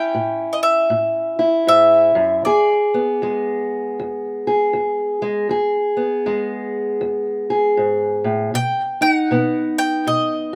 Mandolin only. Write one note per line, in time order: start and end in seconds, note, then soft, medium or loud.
0.00 0.56 G5 medium
0.53 0.62 D#5 medium
0.63 1.67 E5 medium
1.68 2.44 E5 medium
2.45 3.63 D5 medium
8.55 9.02 G5 loud
9.02 9.13 G5 medium
9.13 9.78 F#5 medium
9.78 10.08 G5 medium
10.07 10.55 D#5 medium